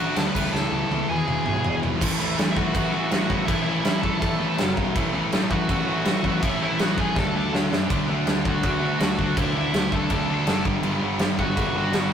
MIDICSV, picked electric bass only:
0, 0, Header, 1, 2, 480
1, 0, Start_track
1, 0, Tempo, 368098
1, 698, Time_signature, 4, 2, 24, 8
1, 15819, End_track
2, 0, Start_track
2, 0, Title_t, "Picked electric bass"
2, 0, Program_c, 0, 34
2, 215, Note_on_c, 0, 38, 84
2, 360, Note_off_c, 0, 38, 0
2, 456, Note_on_c, 0, 37, 89
2, 601, Note_off_c, 0, 37, 0
2, 690, Note_on_c, 0, 37, 102
2, 837, Note_off_c, 0, 37, 0
2, 927, Note_on_c, 0, 37, 98
2, 1075, Note_off_c, 0, 37, 0
2, 1173, Note_on_c, 0, 37, 97
2, 1319, Note_off_c, 0, 37, 0
2, 1420, Note_on_c, 0, 28, 90
2, 1564, Note_off_c, 0, 28, 0
2, 1653, Note_on_c, 0, 28, 91
2, 1800, Note_off_c, 0, 28, 0
2, 1875, Note_on_c, 0, 35, 88
2, 2027, Note_off_c, 0, 35, 0
2, 2130, Note_on_c, 0, 28, 84
2, 2278, Note_off_c, 0, 28, 0
2, 2388, Note_on_c, 0, 32, 87
2, 2531, Note_off_c, 0, 32, 0
2, 2625, Note_on_c, 0, 33, 98
2, 2853, Note_off_c, 0, 33, 0
2, 2876, Note_on_c, 0, 33, 98
2, 3099, Note_off_c, 0, 33, 0
2, 3108, Note_on_c, 0, 33, 94
2, 3335, Note_off_c, 0, 33, 0
2, 3347, Note_on_c, 0, 33, 88
2, 3575, Note_off_c, 0, 33, 0
2, 3586, Note_on_c, 0, 33, 98
2, 3814, Note_off_c, 0, 33, 0
2, 3834, Note_on_c, 0, 33, 103
2, 4059, Note_off_c, 0, 33, 0
2, 4071, Note_on_c, 0, 33, 96
2, 4294, Note_off_c, 0, 33, 0
2, 4301, Note_on_c, 0, 33, 87
2, 4524, Note_off_c, 0, 33, 0
2, 4532, Note_on_c, 0, 33, 106
2, 4997, Note_off_c, 0, 33, 0
2, 5017, Note_on_c, 0, 33, 88
2, 5243, Note_off_c, 0, 33, 0
2, 5251, Note_on_c, 0, 33, 87
2, 5487, Note_off_c, 0, 33, 0
2, 5498, Note_on_c, 0, 33, 97
2, 5731, Note_off_c, 0, 33, 0
2, 5740, Note_on_c, 0, 33, 102
2, 5972, Note_off_c, 0, 33, 0
2, 5986, Note_on_c, 0, 30, 90
2, 6215, Note_off_c, 0, 30, 0
2, 6222, Note_on_c, 0, 35, 96
2, 6453, Note_off_c, 0, 35, 0
2, 6465, Note_on_c, 0, 33, 101
2, 6695, Note_off_c, 0, 33, 0
2, 6704, Note_on_c, 0, 33, 95
2, 6934, Note_off_c, 0, 33, 0
2, 6954, Note_on_c, 0, 33, 97
2, 7170, Note_off_c, 0, 33, 0
2, 7178, Note_on_c, 0, 33, 92
2, 7411, Note_off_c, 0, 33, 0
2, 7421, Note_on_c, 0, 33, 105
2, 7641, Note_off_c, 0, 33, 0
2, 7649, Note_on_c, 0, 33, 92
2, 7886, Note_off_c, 0, 33, 0
2, 7897, Note_on_c, 0, 33, 90
2, 8121, Note_off_c, 0, 33, 0
2, 8129, Note_on_c, 0, 33, 92
2, 8366, Note_off_c, 0, 33, 0
2, 8372, Note_on_c, 0, 33, 96
2, 8832, Note_off_c, 0, 33, 0
2, 8839, Note_on_c, 0, 33, 97
2, 9081, Note_off_c, 0, 33, 0
2, 9096, Note_on_c, 0, 33, 92
2, 9329, Note_off_c, 0, 33, 0
2, 9341, Note_on_c, 0, 38, 94
2, 9557, Note_off_c, 0, 38, 0
2, 9565, Note_on_c, 0, 38, 103
2, 9803, Note_off_c, 0, 38, 0
2, 9815, Note_on_c, 0, 38, 91
2, 10048, Note_off_c, 0, 38, 0
2, 10063, Note_on_c, 0, 42, 88
2, 10289, Note_off_c, 0, 42, 0
2, 10297, Note_on_c, 0, 38, 107
2, 10529, Note_off_c, 0, 38, 0
2, 10554, Note_on_c, 0, 38, 90
2, 10778, Note_off_c, 0, 38, 0
2, 10788, Note_on_c, 0, 38, 85
2, 11014, Note_off_c, 0, 38, 0
2, 11021, Note_on_c, 0, 38, 89
2, 11246, Note_off_c, 0, 38, 0
2, 11254, Note_on_c, 0, 38, 93
2, 11487, Note_off_c, 0, 38, 0
2, 11493, Note_on_c, 0, 38, 102
2, 11722, Note_off_c, 0, 38, 0
2, 11730, Note_on_c, 0, 38, 95
2, 11964, Note_off_c, 0, 38, 0
2, 11980, Note_on_c, 0, 38, 94
2, 12209, Note_off_c, 0, 38, 0
2, 12218, Note_on_c, 0, 38, 100
2, 12676, Note_off_c, 0, 38, 0
2, 12695, Note_on_c, 0, 38, 102
2, 12926, Note_off_c, 0, 38, 0
2, 12938, Note_on_c, 0, 38, 87
2, 13163, Note_off_c, 0, 38, 0
2, 13171, Note_on_c, 0, 38, 93
2, 13382, Note_off_c, 0, 38, 0
2, 13389, Note_on_c, 0, 38, 94
2, 13629, Note_off_c, 0, 38, 0
2, 13636, Note_on_c, 0, 30, 83
2, 13875, Note_off_c, 0, 30, 0
2, 13889, Note_on_c, 0, 31, 103
2, 14102, Note_off_c, 0, 31, 0
2, 14110, Note_on_c, 0, 31, 104
2, 14351, Note_off_c, 0, 31, 0
2, 14360, Note_on_c, 0, 31, 91
2, 14596, Note_off_c, 0, 31, 0
2, 14601, Note_on_c, 0, 31, 87
2, 14836, Note_off_c, 0, 31, 0
2, 14844, Note_on_c, 0, 31, 98
2, 15077, Note_off_c, 0, 31, 0
2, 15095, Note_on_c, 0, 31, 103
2, 15319, Note_off_c, 0, 31, 0
2, 15326, Note_on_c, 0, 31, 100
2, 15558, Note_off_c, 0, 31, 0
2, 15574, Note_on_c, 0, 31, 90
2, 15799, Note_off_c, 0, 31, 0
2, 15819, End_track
0, 0, End_of_file